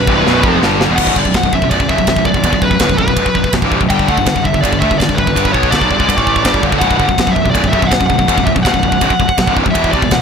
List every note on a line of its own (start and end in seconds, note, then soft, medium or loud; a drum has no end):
0.00 0.08 B1 medium
0.00 0.08 F#2 medium
0.00 0.94 F#3 medium
0.00 0.94 B3 medium
0.00 0.57 B4 medium
0.00 0.95 B4 medium
0.00 0.94 D5 medium
0.07 0.24 C1 loud
0.07 0.26 C2 medium
0.07 0.26 G2 medium
0.07 0.26 C3 loud
0.07 kick loud
0.25 0.42 B0 loud
0.25 0.44 B1 medium
0.25 0.44 F#2 medium
0.25 0.45 B2 medium
0.25 snare medium
0.43 0.60 F1 loud
0.43 0.62 F2 loud
0.43 0.62 C3 loud
0.43 0.63 F3 loud
0.43 kick loud
0.62 0.87 G1 medium
0.62 0.89 G2 medium
0.62 0.90 D3 loud
0.62 0.90 G3 loud
0.62 snare medium
0.81 snare loud
0.89 0.98 E1 loud
0.89 0.98 E2 medium
0.89 0.99 B2 loud
0.96 1.15 B0 medium
0.96 1.17 B1 medium
0.96 1.16 F#5 loud
0.96 kick medium
0.96 crash loud
1.00 1.17 F#2 loud
1.00 1.17 B2 medium
1.07 kick medium
1.16 1.24 G1 medium
1.16 1.26 G2 medium
1.16 1.26 D3 loud
1.16 1.36 D5 medium
1.16 kick medium
1.25 1.34 B0 medium
1.25 1.36 B1 medium
1.25 1.36 F#2 medium
1.25 kick medium
1.34 1.43 B0 medium
1.34 1.44 B1 medium
1.34 1.44 F#2 medium
1.34 1.53 F#5 medium
1.34 kick medium
1.34 snare loud
1.34 ride bell medium
1.43 1.52 B0 medium
1.43 1.54 B1 medium
1.43 1.54 F#2 medium
1.43 kick medium
1.53 1.61 B0 medium
1.53 1.62 B1 medium
1.53 1.62 F#2 medium
1.53 1.70 E5 medium
1.53 kick medium
1.62 1.70 B0 medium
1.62 1.71 B1 medium
1.62 1.71 F#2 medium
1.62 kick medium
1.70 1.79 B0 loud
1.70 1.80 B1 medium
1.70 1.80 F#2 medium
1.70 1.87 D5 medium
1.70 kick medium
1.70 ride bell medium
1.79 1.88 B0 medium
1.79 1.90 B1 medium
1.79 1.89 F#2 medium
1.79 kick medium
1.89 1.98 F#1 medium
1.89 1.98 F#2 medium
1.89 1.99 C#3 medium
1.89 2.23 E5 loud
1.89 kick medium
1.98 2.07 B0 medium
1.98 2.08 B1 medium
1.98 2.08 F#2 medium
1.98 kick medium
2.07 2.16 B0 medium
2.07 2.17 B1 medium
2.07 2.17 F#2 medium
2.07 kick medium
2.07 snare loud
2.07 ride bell medium
2.16 2.25 B0 medium
2.16 2.26 B1 medium
2.16 2.27 F#2 medium
2.16 kick medium
2.25 2.34 B0 medium
2.25 2.35 B1 medium
2.25 2.35 F#2 medium
2.25 2.63 D5 medium
2.25 kick medium
2.34 2.43 B0 medium
2.34 2.45 B1 medium
2.34 2.45 F#2 medium
2.34 kick medium
2.44 2.52 E1 medium
2.44 2.54 E2 medium
2.44 2.54 B2 loud
2.44 kick medium
2.44 ride bell medium
2.52 2.61 B0 medium
2.52 2.62 B1 medium
2.52 2.63 F#2 medium
2.52 kick medium
2.62 2.70 B0 medium
2.62 2.72 B1 medium
2.62 2.72 F#2 medium
2.62 2.96 B4 medium
2.62 kick medium
2.71 2.79 B0 medium
2.71 2.81 B1 medium
2.71 2.81 F#2 medium
2.71 kick medium
2.80 2.89 D1 loud
2.80 2.90 D2 medium
2.80 2.90 A2 loud
2.80 kick medium
2.80 snare loud
2.80 ride bell medium
2.89 2.98 B0 medium
2.89 2.99 B1 medium
2.89 2.99 F#2 medium
2.89 kick medium
2.98 3.07 B0 medium
2.98 3.08 B1 medium
2.98 3.08 F#2 medium
2.98 3.50 B4 medium
2.98 kick medium
3.08 3.16 B0 medium
3.08 3.17 B1 medium
3.08 3.17 F#2 medium
3.08 kick medium
3.17 3.25 B0 loud
3.17 3.26 B1 medium
3.17 3.26 F#2 loud
3.17 kick medium
3.17 ride bell medium
3.26 muted picked electric bass stroke soft
3.26 muted distorted electric guitar stroke medium
3.26 kick medium
3.35 3.44 B0 medium
3.35 3.45 B1 medium
3.35 3.45 F#2 medium
3.35 kick medium
3.44 muted picked electric bass stroke soft
3.44 muted distorted electric guitar stroke medium
3.44 kick medium
3.53 3.61 B0 medium
3.53 3.64 B1 medium
3.53 3.64 F#2 medium
3.53 kick medium
3.53 snare loud
3.53 ride bell medium
3.62 3.79 C1 medium
3.62 3.81 C2 medium
3.62 3.81 G2 medium
3.62 3.82 C3 medium
3.62 kick medium
3.72 kick medium
3.80 3.89 B0 medium
3.80 3.91 B1 medium
3.80 3.91 F#2 medium
3.80 kick medium
3.90 4.07 G1 medium
3.90 4.08 G2 loud
3.90 4.07 D3 loud
3.90 4.09 G3 loud
3.90 4.08 G5 loud
3.90 kick medium
3.90 ride bell medium
3.99 kick medium
4.08 4.17 D2 medium
4.08 4.17 D3 loud
4.08 4.18 A3 loud
4.08 4.46 F#5 loud
4.08 kick medium
4.18 4.26 G1 medium
4.18 4.27 G2 medium
4.18 4.27 D3 medium
4.18 kick medium
4.26 4.35 G1 medium
4.26 4.36 G2 medium
4.26 4.37 D3 medium
4.26 kick medium
4.26 snare loud
4.26 ride bell medium
4.36 4.44 G1 medium
4.36 4.44 G2 medium
4.36 4.44 D3 medium
4.36 kick medium
4.45 4.53 G1 medium
4.45 4.53 G2 medium
4.45 4.54 D3 medium
4.45 4.61 E5 medium
4.45 kick medium
4.54 4.62 G1 medium
4.54 4.62 G2 medium
4.54 4.62 D3 medium
4.54 kick medium
4.61 4.72 G1 loud
4.61 4.71 G2 medium
4.61 4.72 D3 loud
4.61 4.79 D5 medium
4.61 kick medium
4.65 ride bell medium
4.73 4.81 G1 medium
4.73 4.82 G2 medium
4.73 4.82 D3 medium
4.73 kick medium
4.80 4.90 D2 medium
4.80 4.91 D3 medium
4.80 4.91 A3 loud
4.80 4.98 E5 medium
4.80 kick medium
4.90 4.99 G1 medium
4.90 4.99 G2 medium
4.90 5.00 D3 medium
4.90 kick medium
4.98 5.08 G1 medium
4.98 5.08 G2 medium
4.98 5.08 D3 medium
4.98 5.18 D5 loud
4.98 kick medium
4.98 ride bell medium
5.02 snare loud
5.09 5.18 G1 medium
5.09 5.16 G2 medium
5.09 5.17 D3 medium
5.09 kick medium
5.15 5.27 G1 medium
5.15 5.26 G2 medium
5.15 5.27 D3 medium
5.15 5.54 B4 loud
5.15 kick medium
5.27 5.36 G1 medium
5.27 5.34 G2 medium
5.27 5.35 D3 medium
5.27 kick medium
5.36 5.53 G1 loud
5.36 5.54 G2 medium
5.36 5.53 D3 loud
5.36 5.54 G3 medium
5.36 kick medium
5.36 ride bell medium
5.45 kick medium
5.52 5.72 B1 medium
5.52 5.71 B2 medium
5.52 5.71 F#3 medium
5.52 5.72 B3 medium
5.52 5.70 C#5 medium
5.52 kick medium
5.63 kick medium
5.70 5.81 D2 medium
5.70 5.80 D3 medium
5.70 5.81 A3 medium
5.70 6.63 D5 medium
5.70 kick medium
5.70 snare loud
5.70 ride bell medium
5.81 5.90 B1 medium
5.81 5.89 B2 medium
5.81 5.90 F#3 medium
5.81 kick medium
5.89 5.99 G1 loud
5.89 5.99 G2 medium
5.89 5.98 D3 medium
5.89 kick medium
5.99 6.08 C#2 medium
5.99 6.08 C#3 medium
5.99 6.08 G#3 medium
5.99 kick medium
6.08 6.17 G1 medium
6.08 6.16 G2 medium
6.08 6.17 D3 medium
6.08 kick medium
6.08 ride bell medium
6.16 6.44 A1 medium
6.16 6.44 A2 medium
6.16 6.44 E3 medium
6.16 6.45 A3 loud
6.16 kick medium
6.27 kick medium
6.36 kick medium
6.44 6.62 G1 medium
6.44 6.62 G2 medium
6.44 6.62 D3 loud
6.44 6.63 G3 medium
6.44 kick medium
6.44 snare loud
6.44 ride bell medium
6.54 kick medium
6.63 6.72 G1 medium
6.63 6.71 G2 medium
6.63 6.72 D3 medium
6.63 kick medium
6.72 6.81 G1 medium
6.72 6.80 G2 medium
6.72 6.81 D3 loud
6.72 kick medium
6.79 6.99 B0 loud
6.79 6.98 B1 medium
6.79 6.99 F#2 loud
6.79 7.00 B2 loud
6.79 6.96 F#5 loud
6.79 kick medium
6.79 ride bell medium
6.91 kick medium
6.97 7.08 G1 medium
6.97 7.08 G2 medium
6.97 7.08 D3 loud
6.97 7.33 F#5 loud
6.97 kick medium
7.08 7.17 B0 medium
7.08 7.17 B1 medium
7.08 7.17 F#2 medium
7.08 kick medium
7.18 7.26 B0 medium
7.18 7.25 B1 medium
7.18 7.25 F#2 medium
7.18 kick medium
7.18 snare loud
7.18 ride bell medium
7.26 7.35 B0 medium
7.26 7.34 B1 medium
7.26 7.34 F#2 medium
7.26 kick medium
7.31 7.43 B1 medium
7.31 7.43 F#2 medium
7.31 7.50 E5 medium
7.36 7.45 B0 medium
7.36 kick medium
7.44 7.54 B0 medium
7.44 7.52 B1 medium
7.44 7.53 F#2 medium
7.44 kick medium
7.50 7.61 B1 medium
7.50 7.62 F#2 loud
7.50 7.69 D5 medium
7.54 7.63 B0 loud
7.54 kick medium
7.54 ride bell medium
7.62 7.72 B0 medium
7.62 7.71 B1 medium
7.62 7.70 F#2 medium
7.62 kick medium
7.69 7.81 F#1 loud
7.69 7.80 F#2 medium
7.69 7.81 C#3 loud
7.69 7.83 E5 medium
7.73 kick medium
7.81 7.90 B0 medium
7.81 7.89 B1 medium
7.81 7.90 F#2 medium
7.81 7.90 E5 medium
7.81 kick medium
7.87 7.98 B1 medium
7.87 7.98 F#2 medium
7.87 8.05 F#5 loud
7.91 8.00 B0 medium
7.91 kick medium
7.91 snare loud
7.91 ride bell medium
7.99 8.09 B0 medium
7.99 8.08 B1 medium
7.99 8.09 F#2 medium
7.99 kick medium
8.06 8.19 B0 medium
8.06 8.17 B1 medium
8.06 8.18 F#2 medium
8.06 8.44 F#5 loud
8.06 kick medium
8.19 8.28 B0 medium
8.19 8.28 B1 medium
8.19 8.28 F#2 medium
8.19 kick medium
8.28 8.37 E1 loud
8.28 8.37 E2 medium
8.28 8.37 B2 medium
8.28 kick medium
8.28 ride bell medium
8.38 8.46 B0 medium
8.38 8.45 B1 medium
8.38 8.45 F#2 medium
8.38 kick medium
8.45 8.55 B0 medium
8.45 8.54 B1 medium
8.45 8.54 F#2 medium
8.45 8.50 E5 medium
8.45 kick medium
8.55 8.64 B0 medium
8.55 8.65 B1 medium
8.55 8.65 F#2 medium
8.55 kick medium
8.63 8.74 D1 loud
8.63 8.74 D2 medium
8.63 8.74 A2 loud
8.63 9.55 F#5 medium
8.63 kick medium
8.63 ride bell medium
8.67 snare loud
8.74 8.82 B0 medium
8.74 8.82 B1 medium
8.74 8.83 F#2 medium
8.74 kick medium
8.83 8.92 B0 medium
8.83 8.91 B1 medium
8.83 8.92 F#2 medium
8.83 kick medium
8.92 9.01 B0 medium
8.92 9.01 B1 medium
8.92 9.01 F#2 medium
8.92 kick medium
9.01 9.10 B0 medium
9.01 9.09 B1 medium
9.01 9.11 F#2 loud
9.01 kick medium
9.01 ride bell medium
9.10 muted distorted electric guitar stroke medium
9.10 muted picked electric bass stroke soft
9.10 kick medium
9.19 9.28 B0 medium
9.19 9.27 B1 medium
9.19 9.29 F#2 medium
9.19 kick medium
9.28 muted distorted electric guitar stroke medium
9.28 muted picked electric bass stroke soft
9.28 kick medium
9.38 9.47 B0 medium
9.38 9.47 B1 medium
9.38 9.47 F#2 medium
9.38 kick medium
9.38 snare loud
9.38 ride bell medium
9.47 9.64 C1 medium
9.47 9.65 C2 medium
9.47 9.65 G2 medium
9.47 9.65 C3 loud
9.47 kick medium
9.57 kick medium
9.65 9.74 B0 medium
9.65 9.75 B1 medium
9.65 9.75 F#2 medium
9.65 kick medium
9.71 9.92 E5 medium
9.75 9.92 E1 loud
9.75 9.93 E2 medium
9.75 9.93 B2 loud
9.75 9.93 E3 loud
9.75 kick medium
9.75 ride bell medium
9.84 kick medium
9.91 10.02 C2 medium
9.91 10.02 C3 medium
9.91 10.02 G3 loud
9.91 10.11 D5 medium
9.91 kick medium
10.02 10.11 E1 medium
10.02 10.10 E2 medium
10.02 10.10 B2 medium
10.02 kick medium
10.11 10.20 E1 medium
10.11 10.20 E2 medium
10.11 10.20 B2 medium
10.11 10.22 F#5 medium
10.11 kick medium
10.11 snare loud
10.11 ride bell medium